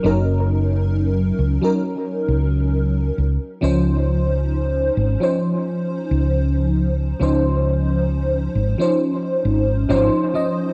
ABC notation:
X:1
M:4/4
L:1/16
Q:"Swing 16ths" 1/4=67
K:Db
V:1 name="FM electric piano"
[G,DEB]6- [G,DEB] [G,DEB]6- [G,DEB] z2 | [F,DEc]6- [F,DEc] [F,DEc]8- [F,DEc] | [F,DEc]6- [F,DEc] [F,DEc]4- [F,DEc] [F,DEc]2 [F,DEe]2 |]
V:2 name="Fretless electric bass" clef=bass
G,,,6 D,, z3 D,,4 D,, z | D,,6 A,,, z4 D,,4- D,, | D,,6 A,,, z3 A,,,2 A,,, z3 |]